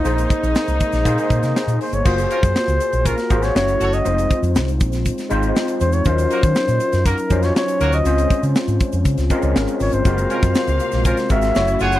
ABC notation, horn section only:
X:1
M:4/4
L:1/16
Q:1/4=120
K:Gblyd
V:1 name="Horn section"
z16 | z2 [DFB] z4 z [DFB] z4 z [G=Ad]2 | z16 | z2 [B,GB] z4 z [B,GB] z4 z [B,GB]2 |
z16 | z2 [DFB] z4 z [DFB] z4 z [FAd]2 |]